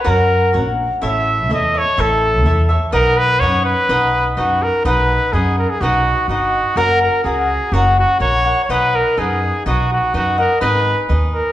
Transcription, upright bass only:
\new Staff \with { instrumentName = "Upright bass" } { \clef bass \time 2/4 \key b \major \tempo 4 = 125 fis,4 ais,,4 | a,,4 e,4 | a,,4 e,4 | b,,4 fis,4 |
b,,4 fis,4 | b,,4 fis,4 | b,,4 g,,4 | fis,,4 cis,4 |
fis,,4 ais,,4 | b,,4 fis,4 | b,,4 fis,4 | gis,,4 dis,4 | }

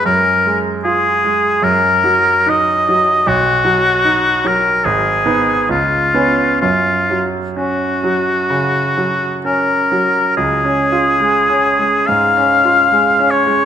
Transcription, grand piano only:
\new Staff \with { instrumentName = "Grand piano" } { \clef bass \time 4/4 \key fis \major \tempo 4 = 72 fis,8 gis8 eis'8 gis8 fis,8 fis8 dis'8 fis8 | b,,8 fis8 dis'8 fis8 gis,,8 <b dis'>8 cis,8 <b cis'>8 | fis,8 fis8 cis'8 fis8 cis8 fis8 cis'8 fis8 | \key des \major \tuplet 3/2 { des,8 des'8 f'8 aes8 des'8 aes8 aes,8 des'8 f'8 aes8 des'8 aes8 } | }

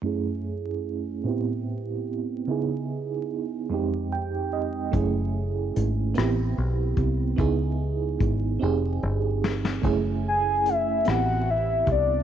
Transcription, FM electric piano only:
\new Staff \with { instrumentName = "FM electric piano" } { \time 6/8 \key fis \dorian \tempo 4. = 49 << { r2. | r2 g''8 ees''8 | r2. | r2. |
r2. | } \\ { <fis, a cis' e' gis'>4. <a, b c' e' g'>4. | <cis b dis' e' gis'>4. <f, aes c' ees' g'>4. | <a cis' e' gis'>4. <b c' e' g'>4. | <b dis' e' gis'>4. <c' ees' g' aes'>4. |
<a cis' e' gis'>4. <b c' e' g'>4. | } >> }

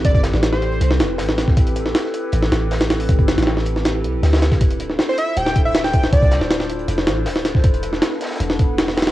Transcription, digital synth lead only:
\new Staff \with { instrumentName = "Digital synth lead" } { \time 4/4 \key a \minor \tempo 4 = 158 d''16 d''16 r8. c''4 r4. r16 | r1 | r1 | r4 r16 c''16 e''8 g''8 r16 e''8 g''8 r16 |
d''8. r2. r16 | r1 | }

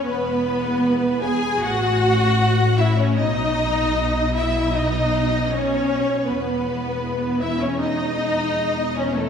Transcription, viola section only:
\new Staff \with { instrumentName = "Viola section" } { \time 4/4 \key e \major \tempo 4 = 78 b4. gis'8 fis'4. e'16 cis'16 | dis'4. e'8 dis'4 cis'4 | b4. e'16 cis'16 dis'4. cis'16 a16 | }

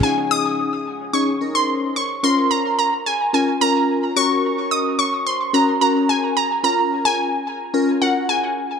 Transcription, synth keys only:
\new Staff \with { instrumentName = "Synth keys" } { \time 4/4 \key des \major \tempo 4 = 109 <des' ees' aes'>4 r4 <des' ees' aes'>8 <des' ees' bes'>4 r8 | <des' f' bes'>4 r4 <des' f' bes'>8 <des' f' bes'>4 <des' ges' bes'>8~ | <des' ges' bes'>4 r4 <des' ges' bes'>8 <des' ges' bes'>4 r8 | <des' f' bes'>4 r4 <des' f' bes'>8 <des' f' bes'>4 r8 | }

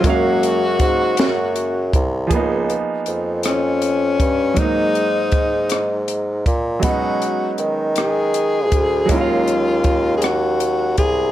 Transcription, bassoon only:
\new Staff \with { instrumentName = "Bassoon" } { \clef bass \time 6/8 \key cis \mixolydian \tempo 4. = 53 fis,4 gis,8 fis,4 bis,,8 | cis,8 r8 eis,4. g,8 | gis,2~ gis,8 ais,8 | b,8 r8 dis4. d,8 |
dis,2~ dis,8 bis,,8 | }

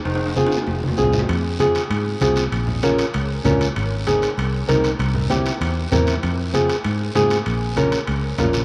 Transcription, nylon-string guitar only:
\new Staff \with { instrumentName = "Nylon-string guitar" } { \time 4/4 \key f \minor \tempo 4 = 195 r4 <c' f' aes'>8 r4. <c' f' aes'>8 r8 | r4 <c' f' aes'>8 r4. <c' f' aes'>8 r8 | r4 <des' f' bes'>8 r4. <des' f' bes'>8 r8 | r4 <c' ees' aes'>8 r4. <c' ees' bes'>8 r8 |
r4 <c' e' g'>8 r4. <c' e' bes'>8 r8 | r4 <c' f' aes'>8 r4. <c' f' aes'>8 r8 | r4 <des' f' bes'>8 r4. <des' f' bes'>8 r8 | }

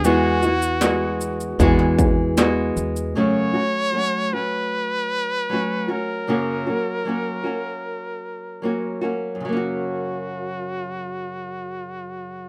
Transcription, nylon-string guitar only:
\new Staff \with { instrumentName = "Nylon-string guitar" } { \time 4/4 \key e \mixolydian \tempo 4 = 77 <e gis b e' fis'>8 <b e' fis'>8 <gis b e' fis'>4 <e gis b e' fis'>4 <gis b e' fis'>4 | <fis, cis fis a cis' fis'>8 <fis a cis' fis'>8 <fis a cis' fis'>8 <fis a cis' fis'>4. <fis a cis' fis'>8 <fis cis' fis'>8 | <fis, cis fis ais cis' fis'>8 <fis ais cis' fis'>8 <fis ais cis' fis'>8 <fis ais cis' fis'>4. <fis ais cis' fis'>8 <fis ais cis' fis'>8 | <fis, cis fis ais cis' fis'>1 | }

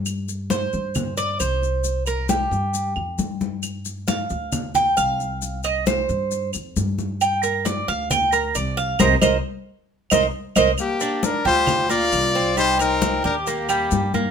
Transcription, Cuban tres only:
\new Staff \with { instrumentName = "Cuban tres" } { \time 4/4 \key c \dorian \tempo 4 = 134 r4 c''4. d''8 c''4~ | c''8 bes'8 g'4. r4. | r4 f''4. g''8 f''4~ | f''8 ees''8 c''4. r4. |
g''8 bes'8 d''8 f''8 g''8 bes'8 d''8 f''8 | <bes' c'' ees''>8 <bes' c'' ees''>8 r4. <bes' c'' ees''>8 r8 <bes' c'' ees''>8 | r8 d'4 g4 bes4 c'8 | g8 c'4 g'8 bes8 g4 bes8 | }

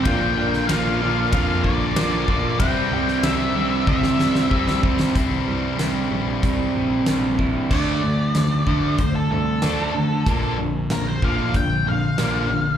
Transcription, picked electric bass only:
\new Staff \with { instrumentName = "Picked electric bass" } { \clef bass \time 4/4 \key c \mixolydian \tempo 4 = 94 bes,,8 bes,,8 bes,,4 f,8 bes,,8 bes,,8 bes,,8 | c,8 c,8 c,8 c,8 c,4 c,8 c,8 | c,8 c,8 c,8 bes,,8 c,8 bes,,8 bes,,4 | d,8 d,8 d,8 d,8 d,8 c,8 d,8 d8 |
bes,,8 bes,,8 bes,,8 bes,,8 bes,,4 bes,,8 bes,,8 | }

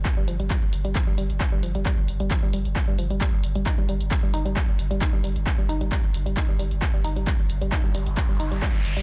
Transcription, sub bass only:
\new Staff \with { instrumentName = "Sub bass" } { \clef bass \time 4/4 \key ees \lydian \tempo 4 = 133 r16 g,,16 g,,16 g,,16 r16 g,,16 g,,16 g,,16 r16 g,,16 g,,16 g,,16 r16 g,,16 g,,16 g,,16 | r16 g,,16 g,,16 g,,16 r16 g,,16 g,,16 g,,16 r16 g,,16 g,,16 g,,16 r16 g,,16 g,,16 g,,16 | r16 g,,16 g,,16 g,,16 r16 g,,16 g,,16 g,,16 r16 g,,16 g,,16 g,,16 r16 g,,16 g,,16 g,,16 | r16 g,,16 g,,16 g,,16 r16 g,,16 g,,16 g,,16 r16 g,,16 g,,16 g,,16 r16 g,,16 g,,16 g,,16 |
r16 g,,16 g,,16 g,,16 r16 g,,16 g,,16 g,,16 r16 g,,16 g,,16 g,,16 r16 g,,16 g,,16 g,,16 | }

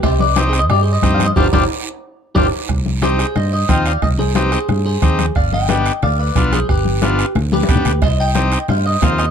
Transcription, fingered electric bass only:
\new Staff \with { instrumentName = "Fingered electric bass" } { \clef bass \time 4/4 \key c \minor \tempo 4 = 180 c,2 g,4 g,4 | g,,8 g,,8 r2 g,,8 r8 | c,2 g,4 ees,4 | c,2 g,4 ees,4 |
g,,2 d,4 b,,4 | g,,2 d,4 f,8 d,8 | c,2 g,4 ees,4 | }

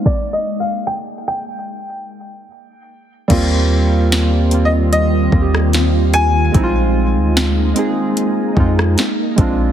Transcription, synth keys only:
\new Staff \with { instrumentName = "Synth keys" } { \time 4/4 \key ees \major \tempo 4 = 74 r1 | <g bes c' f'>4 r8 <g bes c' f'>8 r8 <g bes c' f' g'>4 r8 | <aes c' ees' fes' f'>4 r8 <aes c' ees' aes'>8 r8 <aes c' ees' f'>8 r8 <aes c' d' f'>8 | }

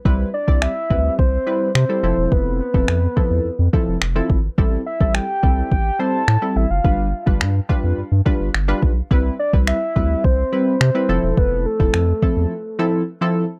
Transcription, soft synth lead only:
\new Staff \with { instrumentName = "Soft synth lead" } { \time 4/4 \key f \lydian \tempo 4 = 106 r8 d''8 e''4 c''4 c''4 | b'8 b'2 r4. | r8 e''8 g''4 g''8 a''4 e''16 f''16~ | f''8. r2. r16 |
r8 d''8 e''4 c''4 c''4 | b'8 a'2 r4. | }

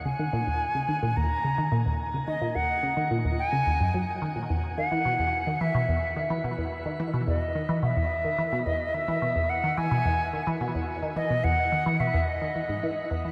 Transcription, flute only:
\new Staff \with { instrumentName = "Flute" } { \time 4/4 \key fes \lydian \tempo 4 = 108 aes''2 bes''4. r8 | ees''8 ges''4 r8 aes''4. r8 | r8 ges''4. e''4. r8 | r4 dis''4 e''4. dis''8 |
e''4 ges''8 gis''4. r4 | dis''8 ges''4 e''8 dis''4. r8 | }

